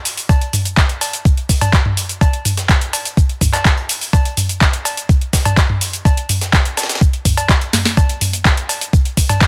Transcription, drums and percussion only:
0.05 closed hi-hat, open hi-hat, shaker
0.17 open hi-hat, shaker
0.29 kick, closed hi-hat, cowbell, shaker
0.41 closed hi-hat
0.53 closed hi-hat, mid tom, open hi-hat, shaker
0.65 closed hi-hat, shaker
0.77 kick, snare, clap, closed hi-hat, shaker
0.89 closed hi-hat
1.01 closed hi-hat, open hi-hat, cowbell, shaker
1.13 closed hi-hat, shaker
1.25 kick, closed hi-hat, shaker
1.37 closed hi-hat
1.49 kick, open hi-hat, shaker
1.61 closed hi-hat, mid tom, cowbell, shaker
1.73 kick, snare, clap, closed hi-hat, shaker
1.85 mid tom
1.97 closed hi-hat, open hi-hat, shaker
2.09 closed hi-hat, shaker
2.21 kick, closed hi-hat, cowbell, shaker
2.33 closed hi-hat
2.45 closed hi-hat, mid tom, open hi-hat, shaker
2.57 snare, closed hi-hat, shaker
2.69 kick, snare, clap, closed hi-hat, shaker
2.81 closed hi-hat
2.93 closed hi-hat, open hi-hat, cowbell, shaker
3.05 closed hi-hat, shaker
3.17 kick, closed hi-hat, shaker
3.29 closed hi-hat
3.41 kick, closed hi-hat, mid tom, open hi-hat, shaker
3.53 snare, clap, closed hi-hat, cowbell, shaker
3.65 kick, snare, clap, closed hi-hat, shaker
3.77 closed hi-hat
3.89 closed hi-hat, open hi-hat, shaker
4.01 open hi-hat, shaker
4.13 kick, closed hi-hat, cowbell, shaker
4.25 closed hi-hat
4.37 closed hi-hat, mid tom, open hi-hat, shaker
4.49 closed hi-hat, shaker
4.61 kick, snare, clap, closed hi-hat, shaker
4.73 closed hi-hat
4.85 closed hi-hat, open hi-hat, cowbell, shaker
4.97 closed hi-hat, shaker
5.09 kick, closed hi-hat, shaker
5.21 closed hi-hat
5.33 kick, snare, closed hi-hat, open hi-hat, shaker
5.45 closed hi-hat, mid tom, cowbell, shaker
5.57 kick, snare, clap, closed hi-hat, shaker
5.69 mid tom
5.81 closed hi-hat, open hi-hat, shaker
5.93 closed hi-hat, shaker
6.05 kick, closed hi-hat, cowbell, shaker
6.17 closed hi-hat
6.29 closed hi-hat, mid tom, open hi-hat, shaker
6.41 snare, closed hi-hat, shaker
6.53 kick, snare, clap, closed hi-hat, shaker
6.65 closed hi-hat
6.77 snare, closed hi-hat, open hi-hat, cowbell, shaker
6.83 snare, closed hi-hat
6.89 snare, closed hi-hat, shaker
6.95 snare, closed hi-hat
7.01 kick, closed hi-hat, shaker
7.13 closed hi-hat
7.25 kick, closed hi-hat, mid tom, open hi-hat, shaker
7.37 closed hi-hat, cowbell, shaker
7.49 kick, snare, clap, closed hi-hat, shaker
7.61 closed hi-hat
7.73 snare, closed hi-hat, mid tom, open hi-hat, shaker
7.85 snare, open hi-hat, shaker
7.97 kick, closed hi-hat, cowbell, shaker
8.09 closed hi-hat
8.21 closed hi-hat, mid tom, open hi-hat, shaker
8.33 closed hi-hat, shaker
8.45 kick, snare, clap, closed hi-hat, shaker
8.57 closed hi-hat
8.69 closed hi-hat, open hi-hat, cowbell, shaker
8.81 closed hi-hat, shaker
8.93 kick, closed hi-hat, shaker
9.05 closed hi-hat
9.17 kick, open hi-hat, shaker
9.29 closed hi-hat, mid tom, cowbell, shaker
9.41 kick, snare, clap, closed hi-hat, shaker

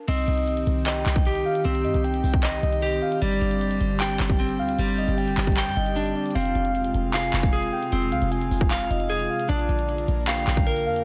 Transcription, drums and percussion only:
0.08 closed hi-hat, crash
0.18 closed hi-hat
0.28 closed hi-hat
0.38 closed hi-hat
0.48 closed hi-hat
0.57 closed hi-hat
0.67 closed hi-hat
0.86 clap, closed hi-hat
0.96 closed hi-hat
1.06 clap, closed hi-hat
1.16 kick, closed hi-hat
1.25 closed hi-hat
1.35 closed hi-hat
1.55 closed hi-hat
1.65 closed hi-hat
1.75 closed hi-hat
1.85 closed hi-hat
1.94 closed hi-hat
2.04 closed hi-hat
2.14 closed hi-hat
2.24 open hi-hat
2.34 kick
2.43 clap, closed hi-hat
2.53 closed hi-hat
2.63 closed hi-hat
2.72 closed hi-hat
2.82 closed hi-hat
2.92 closed hi-hat
3.12 closed hi-hat
3.22 closed hi-hat
3.32 closed hi-hat
3.42 closed hi-hat
3.51 closed hi-hat
3.61 closed hi-hat
3.71 closed hi-hat
3.81 closed hi-hat
4.00 clap, closed hi-hat
4.10 closed hi-hat
4.20 clap, closed hi-hat
4.29 kick, closed hi-hat
4.39 closed hi-hat
4.49 closed hi-hat
4.69 closed hi-hat
4.79 closed hi-hat
4.89 closed hi-hat
4.98 closed hi-hat
5.08 closed hi-hat
5.18 closed hi-hat
5.28 closed hi-hat
5.38 clap, closed hi-hat, open hi-hat
5.42 closed hi-hat
5.47 kick, closed hi-hat
5.52 closed hi-hat
5.57 clap, closed hi-hat
5.67 closed hi-hat
5.77 closed hi-hat
5.86 closed hi-hat
5.96 closed hi-hat
6.06 closed hi-hat
6.26 closed hi-hat
6.30 closed hi-hat
6.35 closed hi-hat
6.40 closed hi-hat
6.45 closed hi-hat
6.55 closed hi-hat
6.65 closed hi-hat
6.75 closed hi-hat
6.84 closed hi-hat
6.94 closed hi-hat
7.14 clap, closed hi-hat
7.23 closed hi-hat
7.33 clap, closed hi-hat
7.43 kick, closed hi-hat
7.53 closed hi-hat
7.63 closed hi-hat
7.82 closed hi-hat
7.92 closed hi-hat
8.02 closed hi-hat
8.12 closed hi-hat
8.22 closed hi-hat
8.32 closed hi-hat
8.41 closed hi-hat
8.51 open hi-hat
8.61 kick
8.71 clap, closed hi-hat
8.80 closed hi-hat
8.91 closed hi-hat
9.00 closed hi-hat
9.10 closed hi-hat
9.19 closed hi-hat
9.39 closed hi-hat
9.49 closed hi-hat
9.59 closed hi-hat
9.69 closed hi-hat
9.79 closed hi-hat
9.89 closed hi-hat
9.98 closed hi-hat
10.08 closed hi-hat
10.28 clap, closed hi-hat
10.37 closed hi-hat
10.47 clap, closed hi-hat
10.57 kick, closed hi-hat
10.67 closed hi-hat
10.76 closed hi-hat
10.96 closed hi-hat

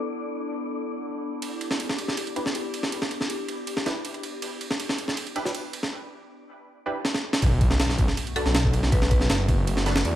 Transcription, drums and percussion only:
1.42 ride
1.61 ride
1.71 snare
1.80 ride
1.89 snare
1.99 ride
2.08 snare
2.17 ride
2.27 ride
2.36 ride
2.46 snare
2.55 ride
2.74 ride
2.83 snare
2.92 ride
3.02 snare
3.11 ride
3.21 snare
3.30 ride
3.49 ride
3.67 ride
3.77 snare
3.86 snare, ride
4.05 ride
4.14 ride
4.23 ride
4.42 ride
4.61 ride
4.71 snare
4.80 ride
4.89 snare
4.98 ride
5.08 snare
5.17 ride
5.27 ride
5.36 ride
5.45 snare
5.55 ride
5.73 ride
5.83 snare
7.05 snare
7.14 snare
7.33 snare
7.42 kick, ride
7.61 kick, ride
7.71 snare
7.80 snare, ride
7.89 snare
7.98 kick, ride
8.08 snare
8.17 ride
8.27 ride
8.36 ride
8.46 snare
8.55 snare, ride
8.64 kick
8.73 ride
8.83 snare
8.92 kick, ride
9.02 snare
9.11 kick, ride
9.21 snare
9.30 snare, ride
9.48 kick, ride
9.67 ride
9.77 snare
9.86 snare, ride
9.96 snare
10.05 ride

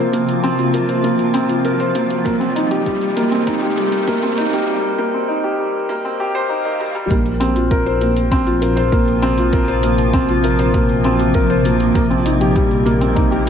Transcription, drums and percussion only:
0.13 closed hi-hat
0.29 closed hi-hat
0.44 closed hi-hat
0.59 closed hi-hat
0.74 closed hi-hat
0.89 closed hi-hat
1.04 closed hi-hat
1.19 closed hi-hat
1.34 closed hi-hat
1.49 closed hi-hat
1.65 closed hi-hat
1.80 closed hi-hat
1.95 closed hi-hat
2.10 closed hi-hat
2.26 kick, closed hi-hat
2.41 closed hi-hat
2.56 closed hi-hat
2.71 closed hi-hat
2.86 kick, closed hi-hat
3.02 closed hi-hat
3.17 closed hi-hat
3.32 closed hi-hat
3.47 kick, closed hi-hat
3.62 closed hi-hat
3.77 closed hi-hat
3.92 closed hi-hat
4.08 kick, closed hi-hat
4.23 closed hi-hat
4.38 closed hi-hat
4.53 closed hi-hat
6.65 high tom
6.81 mid tom
6.96 mid tom
7.11 kick, closed hi-hat
7.26 closed hi-hat
7.41 closed hi-hat
7.56 closed hi-hat
7.71 kick, closed hi-hat
7.87 closed hi-hat
8.01 closed hi-hat
8.17 closed hi-hat
8.32 kick, closed hi-hat
8.47 closed hi-hat
8.62 closed hi-hat
8.77 closed hi-hat
8.92 kick, closed hi-hat
9.08 closed hi-hat
9.22 closed hi-hat
9.38 closed hi-hat
9.53 kick, closed hi-hat
9.68 closed hi-hat
9.83 closed hi-hat
9.98 closed hi-hat
10.13 kick, closed hi-hat
10.29 closed hi-hat
10.44 closed hi-hat
10.59 closed hi-hat
10.74 kick, closed hi-hat
10.89 closed hi-hat
11.04 closed hi-hat
11.20 closed hi-hat
11.34 kick, closed hi-hat
11.50 closed hi-hat
11.65 closed hi-hat
11.80 closed hi-hat
11.95 kick, closed hi-hat
12.11 closed hi-hat
12.26 closed hi-hat
12.41 closed hi-hat
12.56 kick, closed hi-hat
12.71 closed hi-hat
12.86 closed hi-hat
13.01 closed hi-hat
13.16 kick, closed hi-hat
13.32 closed hi-hat

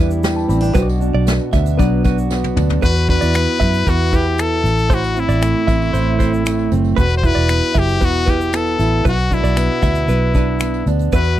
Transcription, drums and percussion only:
0.11 shaker
0.23 snare, tambourine, shaker
0.39 tambourine
0.50 tambourine, shaker
0.63 tambourine, shaker
0.75 kick, tambourine, shaker
0.89 tambourine
1.01 shaker
1.27 snare, tambourine, shaker
1.40 tambourine
1.53 kick, snare, tambourine, shaker
1.66 tambourine, shaker
1.79 kick, tambourine, shaker
2.04 kick, tambourine, shaker
2.18 shaker
2.31 snare, tambourine
2.44 high tom, tambourine
2.57 mid tom, tambourine
2.69 floor tom, tambourine
2.82 kick, tambourine, shaker
2.95 tambourine
3.08 kick, shaker
3.22 shaker
3.34 finger snap, tambourine, shaker
3.47 tambourine
3.60 finger snap, kick, tambourine, shaker
3.73 tambourine, shaker
3.86 kick, tambourine, shaker
4.12 kick, tambourine, shaker
4.38 finger snap, tambourine, shaker
4.65 tambourine, shaker
4.78 tambourine, shaker
4.90 kick, tambourine, shaker
5.04 tambourine
5.16 shaker
5.29 shaker
5.42 finger snap, tambourine, shaker
5.68 kick, tambourine, shaker
5.82 tambourine
5.94 tambourine, shaker
6.20 kick, tambourine, shaker
6.34 shaker
6.46 finger snap, tambourine, shaker
6.59 tambourine
6.72 tambourine, shaker
6.84 tambourine
6.98 kick, tambourine, shaker
7.10 tambourine
7.23 kick, shaker
7.49 finger snap, tambourine, shaker
7.63 tambourine
7.75 kick, tambourine, shaker
7.88 shaker
8.01 kick, tambourine, shaker
8.27 kick, tambourine, shaker
8.41 shaker
8.53 finger snap, tambourine, shaker
8.67 tambourine
8.79 tambourine, shaker
9.05 kick, tambourine, shaker
9.19 tambourine
9.31 kick, shaker
9.44 shaker
9.57 finger snap, tambourine, shaker
9.82 finger snap, kick, tambourine, shaker
9.95 tambourine, shaker
10.09 tambourine, shaker
10.34 kick, tambourine, shaker
10.60 finger snap, tambourine, shaker
10.74 tambourine
10.87 tambourine, shaker
10.99 tambourine, shaker
11.12 kick, tambourine, shaker
11.24 tambourine

